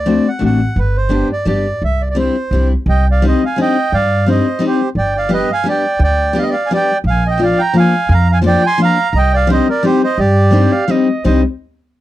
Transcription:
0.00 0.17 D2 medium
0.00 0.29 D5 medium
0.06 0.25 A3 medium
0.06 0.25 C4 medium
0.06 0.26 D4 medium
0.06 0.26 F#4 soft
0.28 0.44 F#5 medium
0.39 0.64 A1 medium
0.39 0.59 A3 medium
0.39 0.59 C4 soft
0.39 0.60 D4 soft
0.39 0.60 F#4 medium
0.45 0.79 F#5 medium
0.76 1.22 G1 medium
0.76 0.97 B4 medium
0.97 1.28 C5 medium
1.09 1.29 G3 medium
1.09 1.29 B3 medium
1.09 1.30 D4 medium
1.09 1.30 G4 medium
1.32 1.46 D5 medium
1.45 1.69 G1 medium
1.45 1.65 G3 medium
1.45 1.65 B3 soft
1.45 1.65 D4 medium
1.45 1.66 G4 medium
1.45 1.83 D5 medium
1.82 2.27 C2 medium
1.82 2.02 E5 medium
2.02 2.08 D5 medium
2.10 2.16 D5 medium
2.15 2.35 G3 medium
2.15 2.35 C4 medium
2.15 2.35 D4 medium
2.15 2.35 E4 medium
2.19 2.68 C5 medium
2.51 2.74 C2 medium
2.51 2.71 G3 medium
2.51 2.71 C4 soft
2.51 2.72 D4 medium
2.51 2.72 E4 medium
2.86 3.32 C2 medium
2.86 3.06 D#5 medium
2.86 3.08 G5 medium
3.11 3.24 D5 medium
3.11 3.25 F5 medium
3.22 3.41 G3 medium
3.22 3.41 C4 medium
3.22 3.42 D4 medium
3.22 3.42 D#4 medium
3.27 3.42 C5 medium
3.27 3.44 D#5 medium
3.45 3.58 F5 medium
3.45 3.60 G#5 medium
3.56 3.75 G3 medium
3.56 3.76 C4 medium
3.56 3.76 D4 medium
3.56 3.76 D#4 medium
3.61 3.92 D#5 medium
3.61 3.95 G5 medium
3.92 4.37 G2 medium
3.92 4.25 D5 medium
3.92 4.29 F5 medium
4.26 4.45 G3 medium
4.26 4.46 C4 medium
4.26 4.46 D4 medium
4.26 4.46 D#4 medium
4.26 4.60 C5 medium
4.31 4.64 D#5 medium
4.59 4.79 G3 medium
4.59 4.79 C4 medium
4.59 4.80 D4 medium
4.59 4.80 D#4 medium
4.66 4.89 G4 medium
4.66 4.90 C5 medium
4.95 5.41 G1 medium
4.95 5.14 D5 medium
4.95 5.17 G5 medium
5.16 5.30 D5 medium
5.16 5.33 F5 medium
5.29 5.48 G3 medium
5.29 5.49 B3 medium
5.29 5.49 D4 medium
5.29 5.49 G4 medium
5.33 5.49 B4 medium
5.33 5.51 D#5 medium
5.52 5.66 F5 medium
5.52 5.68 G#5 loud
5.64 5.83 G3 medium
5.64 5.84 B3 medium
5.64 5.85 D4 medium
5.64 5.84 G4 medium
5.69 6.00 D5 medium
5.69 6.03 G5 medium
5.99 6.45 D2 loud
5.99 6.34 D5 medium
6.04 6.38 G5 medium
6.33 6.53 G3 medium
6.33 6.54 B3 medium
6.33 6.54 D4 medium
6.33 6.54 G4 medium
6.33 6.42 D5 medium
6.38 6.50 D#5 medium
6.38 6.44 F5 medium
6.50 6.69 D5 medium
6.50 6.72 F5 medium
6.66 6.71 G#5 medium
6.71 6.89 G3 medium
6.71 6.90 B3 medium
6.71 6.90 D4 medium
6.71 6.90 G4 medium
6.71 6.97 D5 medium
6.76 6.98 G5 loud
7.04 7.50 A#1 medium
7.04 7.24 F5 medium
7.10 7.27 G#5 medium
7.27 7.41 D#5 medium
7.27 7.44 G5 medium
7.38 7.58 F3 medium
7.38 7.58 A#3 medium
7.38 7.59 D4 medium
7.38 7.59 F4 medium
7.42 7.59 D5 medium
7.42 7.62 F5 medium
7.59 7.74 G5 medium
7.59 7.77 A#5 loud
7.73 7.93 F3 medium
7.73 7.93 A#3 medium
7.73 7.94 D4 medium
7.73 7.94 F4 medium
7.73 8.08 F5 medium
7.79 8.13 G#5 medium
8.09 8.54 F2 loud
8.09 8.28 F5 medium
8.14 8.31 A#5 medium
8.32 8.38 F5 medium
8.32 8.40 G#5 medium
8.42 8.62 F3 medium
8.42 8.62 A#3 medium
8.42 8.62 D4 medium
8.42 8.63 F4 medium
8.47 8.63 D5 medium
8.47 8.65 G5 medium
8.66 8.79 G#5 medium
8.66 8.81 C6 loud
8.78 8.97 F3 medium
8.78 8.97 A#3 medium
8.78 8.98 D4 medium
8.78 8.98 F4 medium
8.82 9.13 F5 medium
8.82 9.18 A#5 loud
9.13 9.58 C2 medium
9.13 9.32 D#5 medium
9.18 9.35 G5 medium
9.34 9.48 D5 medium
9.34 9.51 F5 medium
9.47 9.66 G3 medium
9.47 9.67 C4 medium
9.47 9.67 D4 medium
9.47 9.68 D#4 medium
9.47 9.67 C5 medium
9.53 9.68 D#5 medium
9.69 9.83 A#4 medium
9.69 9.85 D5 medium
9.83 10.02 G3 medium
9.83 10.02 C4 medium
9.83 10.02 D4 medium
9.83 10.02 D#4 medium
9.83 10.02 G4 medium
9.83 10.02 C5 medium
10.04 10.18 C5 medium
10.04 10.20 D#5 medium
10.18 10.63 G2 medium
10.18 10.84 G4 medium
10.18 10.85 D5 medium
10.51 10.71 G3 medium
10.51 10.71 C4 medium
10.51 10.71 D4 medium
10.51 10.72 D#4 medium
10.51 10.74 C5 medium
10.72 10.92 F5 medium
10.88 11.07 G3 medium
10.88 11.07 C4 medium
10.88 11.07 D4 medium
10.88 11.08 D#4 medium
10.88 11.25 D#5 medium
11.24 11.42 C2 medium
11.24 11.42 G3 medium
11.24 11.42 C4 medium
11.24 11.41 D4 medium
11.24 11.42 D#4 medium
11.24 11.42 C5 medium
11.24 11.42 D#5 medium

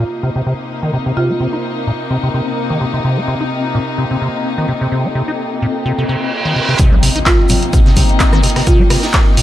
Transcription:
0.00 6.75 C3 medium
0.00 6.76 A#3 medium
0.00 9.42 C4 medium
0.00 6.75 D#4 medium
0.00 9.42 F4 medium
0.00 9.42 D#5 medium
0.00 0.91 A5 medium
0.15 3.57 A#4 medium
0.23 0.30 C3 medium
0.36 0.42 C3 medium
0.46 0.54 C3 medium
0.77 9.42 G5 medium
0.83 0.92 D#3 medium
0.93 0.98 C3 medium
1.06 1.12 C3 medium
1.17 1.31 C3 medium
1.17 1.53 F4 medium
1.30 1.33 C4 loud
1.40 1.47 C3 medium
1.53 1.57 D#4 medium
1.87 1.91 A#2 medium
2.11 2.18 C3 medium
2.23 2.29 C3 medium
2.34 2.41 C3 medium
2.70 2.79 D#3 medium
2.81 2.85 C3 medium
2.94 3.00 C3 medium
3.04 3.19 C3 medium
3.17 3.21 C4 loud
3.28 3.35 C3 medium
3.41 3.44 D#4 medium
3.41 6.80 A4 medium
3.75 3.79 A#2 medium
3.98 4.05 C3 medium
4.11 4.17 C3 medium
4.22 4.29 C3 medium
4.58 4.67 D#3 medium
4.69 4.73 C3 medium
4.81 4.87 C3 medium
4.92 5.06 C3 medium
5.05 5.08 C4 loud
5.15 5.22 C3 medium
5.28 5.32 D#4 medium
5.62 5.66 A#2 medium
5.86 5.93 C3 medium
5.86 reverse cymbal medium
5.98 6.04 C3 medium
6.09 6.16 C3 medium
6.45 6.54 D#3 medium
6.56 6.60 C3 medium
6.69 6.75 C3 medium
6.79 6.94 C3 medium
6.79 9.42 C3 medium
6.79 9.42 A#3 medium
6.79 9.42 D#4 medium
6.79 kick loud
6.79 closed hi-hat medium
6.79 impact medium
6.79 shaker medium
6.92 6.96 C4 loud
6.92 low conga medium
7.00 7.10 C3 medium
7.00 9.42 A#4 medium
7.00 open hi-hat loud
7.00 shaker medium
7.16 7.19 D#4 medium
7.16 closed hi-hat medium
7.26 7.42 F4 medium
7.26 kick loud
7.26 snare loud
7.26 clap loud
7.26 closed hi-hat medium
7.26 shaker medium
7.49 7.54 A#2 medium
7.49 open hi-hat loud
7.49 low conga medium
7.49 shaker medium
7.63 closed hi-hat medium
7.73 7.80 C3 medium
7.73 kick loud
7.73 closed hi-hat medium
7.73 shaker medium
7.86 7.92 C3 medium
7.86 snare soft
7.96 8.04 C3 medium
7.96 kick medium
7.96 open hi-hat loud
7.96 low conga medium
7.96 shaker medium
8.09 closed hi-hat medium
8.19 kick loud
8.19 snare loud
8.19 clap loud
8.19 closed hi-hat soft
8.19 shaker medium
8.33 8.42 D#3 medium
8.33 cross-stick medium
8.43 8.48 C3 medium
8.43 open hi-hat loud
8.43 shaker medium
8.50 closed hi-hat medium
8.56 8.62 C3 medium
8.56 cross-stick medium
8.56 snare soft
8.56 open hi-hat medium
8.67 8.81 C3 medium
8.67 9.03 F4 medium
8.67 kick loud
8.67 closed hi-hat medium
8.67 shaker medium
8.80 8.83 C4 loud
8.80 low conga medium
8.90 8.97 C3 medium
8.90 cross-stick medium
8.90 open hi-hat medium
8.90 open hi-hat loud
9.03 9.07 D#4 medium
9.03 snare medium
9.03 closed hi-hat medium
9.13 kick loud
9.13 snare loud
9.13 clap loud
9.13 closed hi-hat medium
9.13 shaker medium
9.37 9.42 A#2 medium
9.37 open hi-hat loud
9.37 shaker medium

